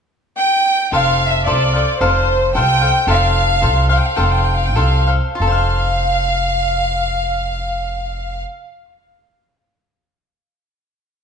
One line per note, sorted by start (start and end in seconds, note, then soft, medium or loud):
0.37 0.88 G5 medium
0.92 1.48 F1 medium
0.92 1.46 F4 soft
0.92 1.47 A4 medium
0.92 1.47 C5 medium
0.92 1.29 F5 medium
0.92 1.47 F5 medium
1.28 1.47 E5 medium
1.45 1.82 C2 medium
1.45 1.74 F4 soft
1.45 1.74 A4 medium
1.45 1.73 C5 soft
1.45 1.96 D5 medium
1.45 1.72 F5 medium
1.73 2.00 A4 soft
1.73 2.00 C5 soft
1.73 2.00 F5 soft
2.00 2.57 F1 medium
2.00 2.54 F4 medium
2.00 2.54 A4 medium
2.00 2.54 C5 medium
2.00 2.55 C5 soft
2.00 2.56 F5 medium
2.55 2.90 C2 medium
2.55 2.82 F4 soft
2.55 2.81 A4 medium
2.55 2.81 C5 medium
2.55 2.80 F5 medium
2.55 3.04 G5 medium
2.81 3.06 A4 soft
2.81 3.07 C5 soft
2.81 3.07 F5 soft
3.07 3.64 F1 medium
3.07 3.61 F4 medium
3.07 3.61 A4 medium
3.07 3.62 C5 medium
3.07 3.62 F5 medium
3.07 3.88 F5 medium
3.61 3.98 C2 medium
3.61 3.89 F4 soft
3.61 3.89 A4 soft
3.61 3.89 C5 soft
3.61 3.88 F5 medium
3.89 4.16 A4 soft
3.89 4.16 C5 soft
3.89 4.16 F5 soft
3.89 3.98 F5 medium
3.97 4.06 G5 medium
4.06 4.14 F5 medium
4.15 4.77 F1 medium
4.15 4.75 F4 medium
4.15 4.75 A4 medium
4.15 4.76 C5 medium
4.15 4.77 F5 medium
4.15 4.23 G5 medium
4.24 4.32 F5 medium
4.32 4.40 G5 medium
4.38 4.48 F5 medium
4.47 4.56 G5 medium
4.57 4.66 F5 medium
4.65 4.74 G5 medium
4.75 5.18 C2 medium
4.75 5.07 F4 soft
4.75 5.07 A4 soft
4.75 5.07 C5 medium
4.75 5.06 F5 soft
4.75 5.09 F5 medium
5.07 5.40 A4 soft
5.07 5.40 C5 soft
5.07 5.39 F5 soft
5.35 8.85 F4 soft
5.39 8.43 F1 medium
5.39 8.92 A4 medium
5.39 8.42 F5 medium
5.47 8.97 C5 medium
5.52 9.02 F5 medium